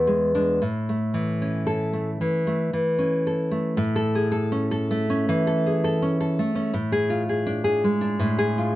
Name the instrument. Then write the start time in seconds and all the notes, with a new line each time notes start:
nylon-string guitar
Already playing: E2
0.07 G#3
0.35 G#3 D4
0.62 A2
0.89 A3
1.14 E3
1.42 C#4
1.67 A4
1.93 A3
2.21 E3
2.47 A3
2.73 E3
2.98 C#4
3.27 A4
3.51 A3
3.77 A2
3.96 A4
4.15 G#4
4.32 A4
4.52 C#4
4.71 A4
4.91 A3
5.10 C#4
5.29 E3
5.47 A4
5.66 G#4
5.84 A4
6.02 C#4
6.20 A4
6.39 A3
6.55 C#4
6.74 A2
6.92 G#4
7.10 F4
7.29 G#4
7.46 D4
7.64 G#4
7.84 G#3
8.01 D4
8.19 A2
8.38 G#4
8.58 F4